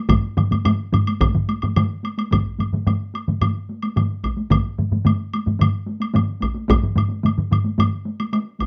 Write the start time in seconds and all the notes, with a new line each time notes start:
0.09 taiko, taiko low-mid, taiko mid, taiko high, high woodblock
0.37 taiko low-mid, taiko mid, taiko high, high woodblock
0.51 taiko low-mid, taiko mid, taiko high, high woodblock
0.65 taiko low-mid, taiko mid, taiko high, high woodblock
0.93 taiko low-mid, taiko mid, taiko high, high woodblock
1.07 taiko high, high woodblock
1.21 taiko, taiko low-mid, taiko mid, taiko high, high woodblock
1.35 taiko low-mid, taiko mid
1.49 taiko high, high woodblock
1.62 taiko low-mid, taiko mid, taiko high, high woodblock
1.76 taiko low-mid, taiko mid, taiko high, high woodblock
2.04 taiko high, high woodblock
2.18 taiko high, high woodblock
2.31 taiko, taiko low-mid, taiko mid, taiko high, high woodblock
2.59 taiko low-mid, taiko mid, taiko high, high woodblock
2.73 taiko low-mid, taiko mid, taiko high
2.86 taiko low-mid, taiko mid, taiko high, high woodblock
3.14 taiko high, high woodblock
3.28 taiko low-mid, taiko mid, taiko high
3.41 taiko low-mid, taiko mid, taiko high, high woodblock
3.69 taiko high
3.82 taiko high, high woodblock
3.96 taiko low-mid, taiko mid, taiko high, high woodblock
4.24 taiko, taiko high, high woodblock
4.37 taiko high
4.50 taiko, taiko low-mid, taiko mid, taiko high, high woodblock
4.78 taiko low-mid, taiko mid, taiko high
4.92 taiko low-mid, taiko mid, taiko high
5.05 taiko low-mid, taiko mid, taiko high, high woodblock
5.33 taiko high, high woodblock
5.46 taiko low-mid, taiko mid, taiko high
5.59 taiko low-mid, taiko mid, taiko high, high woodblock
5.86 taiko high
6.00 taiko high, high woodblock
6.14 taiko low-mid, taiko mid, taiko high, high woodblock
6.41 taiko, taiko high, high woodblock
6.54 taiko high
6.68 taiko, taiko low-mid, taiko mid, taiko high, high woodblock
6.83 taiko low-mid, taiko mid
6.96 taiko low-mid, taiko mid, taiko high, high woodblock
7.09 taiko high
7.23 taiko low-mid, taiko mid, taiko high, high woodblock
7.38 taiko low-mid, taiko mid
7.51 taiko low-mid, taiko mid, taiko high, high woodblock
7.64 taiko high
7.78 taiko low-mid, taiko mid, taiko high, high woodblock
8.05 taiko high
8.20 taiko high, high woodblock
8.33 taiko high, high woodblock
8.59 taiko, taiko high, high woodblock